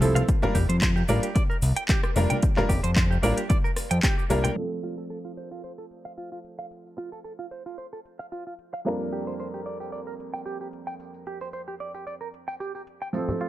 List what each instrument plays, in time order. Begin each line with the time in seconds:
Already playing: analog synth bass C2
0.01 grand piano F3 A3 C4 E4 A4, open hi-hat, high conga, cabasa
0.15 clean electric guitar F5, cross-stick, closed hi-hat, high conga, cabasa
0.28 kick, closed hi-hat, cabasa
0.42 grand piano G3 A#3 D4 F4 A#4, low conga, cabasa
0.55 analog synth bass F1, clean electric guitar G4, kick, open hi-hat, cabasa
0.69 analog synth bass F2, clean electric guitar C5, closed hi-hat, cabasa
0.81 clean electric guitar C5, kick, clap, closed hi-hat, cabasa
0.96 clean electric guitar G4, cabasa
1.08 analog synth bass A1, grand piano G3 A#3 D4 F4 A#4, clean electric guitar D5, open hi-hat, cabasa
1.23 clean electric guitar G4, closed hi-hat, cabasa
1.35 clean electric guitar D5, kick, closed hi-hat, cabasa
1.50 clean electric guitar A#4, cabasa
1.62 analog synth bass C2, open hi-hat, cabasa
1.76 clean electric guitar G5, closed hi-hat, cabasa
1.88 clean electric guitar G4, kick, clap, closed hi-hat, cabasa
2.03 clean electric guitar G4, cross-stick, cabasa
2.15 analog synth bass F1, grand piano G3 A#3 D4 F4 A#4, open hi-hat, high conga, cabasa
2.30 clean electric guitar G5, closed hi-hat, high conga, cabasa
2.42 kick, closed hi-hat, cabasa
2.56 grand piano G3 A#3 D4 F4 A#4, cross-stick, clap, low conga, cabasa
2.69 analog synth bass F1, clean electric guitar G4, kick, open hi-hat, cabasa
2.84 analog synth bass F2, clean electric guitar C5, closed hi-hat, cabasa
2.96 clean electric guitar C5, kick, clap, closed hi-hat, cabasa
3.11 clean electric guitar G4, cabasa
3.22 analog synth bass A1, grand piano G3 A#3 D4 F4 A#4, clean electric guitar D5, open hi-hat, cabasa
3.37 clean electric guitar G4, closed hi-hat, cabasa
3.49 clean electric guitar D5, kick, closed hi-hat, cabasa
3.64 clean electric guitar A#4, cabasa
3.76 cross-stick, open hi-hat, cabasa
3.91 analog synth bass F2, clean electric guitar G5, closed hi-hat, cabasa
4.03 clean electric guitar G4, kick, clap, closed hi-hat, cabasa
4.18 clean electric guitar G4, cabasa
4.30 analog synth bass C2, grand piano G3 A#3 D4 F4 A#4, open hi-hat, high conga, cabasa
4.44 clean electric guitar G5, cross-stick, closed hi-hat, high conga, cabasa
4.56 grand piano F3 A3 C4 A4, closed hi-hat, tambourine
4.83 clean electric guitar F4
4.98 clean electric guitar A4, closed hi-hat, tambourine
5.10 clean electric guitar A4, closed hi-hat, tambourine
5.25 clean electric guitar F4, tambourine
5.37 clean electric guitar C5, closed hi-hat
5.51 clean electric guitar F4, closed hi-hat, tambourine
5.64 clean electric guitar C5, closed hi-hat, tambourine
5.78 clean electric guitar A4, tambourine
5.91 closed hi-hat
6.05 clean electric guitar F5, closed hi-hat, tambourine
6.18 clean electric guitar F4, closed hi-hat, tambourine
6.32 clean electric guitar F4, tambourine
6.45 closed hi-hat
6.59 clean electric guitar F5, tambourine
6.71 closed hi-hat, tambourine
6.86 tambourine
6.98 clean electric guitar F4, closed hi-hat
7.12 clean electric guitar A4, closed hi-hat, tambourine
7.24 clean electric guitar A4, closed hi-hat, tambourine
7.39 clean electric guitar F4, tambourine
7.51 clean electric guitar C5, closed hi-hat
7.66 clean electric guitar F4, closed hi-hat, tambourine
7.78 clean electric guitar C5, closed hi-hat, tambourine
7.93 clean electric guitar A4, tambourine
8.05 closed hi-hat
8.19 clean electric guitar F5, closed hi-hat, tambourine
8.32 clean electric guitar F4, closed hi-hat, tambourine
8.47 clean electric guitar F4, tambourine
8.59 closed hi-hat
8.73 clean electric guitar F5, closed hi-hat, tambourine
8.85 grand piano F2 G3 A#3 D4 F4 A#4, closed hi-hat, tambourine
9.00 tambourine
9.13 clean electric guitar G4, closed hi-hat
9.27 clean electric guitar C5, closed hi-hat, tambourine
9.40 clean electric guitar C5, closed hi-hat, tambourine
9.54 clean electric guitar G4, tambourine
9.66 clean electric guitar D5, closed hi-hat
9.80 clean electric guitar G4, closed hi-hat, tambourine
9.92 clean electric guitar D5, closed hi-hat, tambourine
10.07 clean electric guitar A#4, tambourine
10.20 closed hi-hat
10.34 clean electric guitar G5, closed hi-hat, tambourine
10.46 clean electric guitar G4, closed hi-hat, tambourine
10.61 clean electric guitar G4, tambourine
10.73 closed hi-hat
10.87 clean electric guitar G5, closed hi-hat, tambourine
11.00 closed hi-hat, tambourine
11.14 closed hi-hat, tambourine
11.27 clean electric guitar G4, closed hi-hat
11.41 clean electric guitar C5, closed hi-hat, tambourine
11.53 clean electric guitar C5, closed hi-hat, tambourine
11.68 clean electric guitar G4, tambourine
11.80 clean electric guitar D5, closed hi-hat
11.94 clean electric guitar G4, closed hi-hat, tambourine
12.07 clean electric guitar D5, closed hi-hat, tambourine
12.21 clean electric guitar A#4, closed hi-hat, tambourine
12.34 closed hi-hat
12.48 clean electric guitar G5, closed hi-hat, tambourine
12.60 clean electric guitar G4, closed hi-hat, tambourine
12.75 clean electric guitar G4, tambourine
12.87 closed hi-hat
13.02 clean electric guitar G5, closed hi-hat, tambourine
13.13 grand piano F3 A3 C4 A4, closed hi-hat, tambourine
13.29 tambourine, low conga
13.41 clean electric guitar F4, closed hi-hat, cabasa